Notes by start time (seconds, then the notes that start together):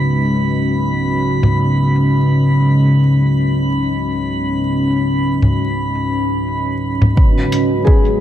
Already playing: C#3 G#3 C#4 F#4 B4 D#5 B5
1.43 low conga
5.42 low conga
7.02 low conga
7.17 G#3, kick
7.52 closed hi-hat
7.85 G#4, kick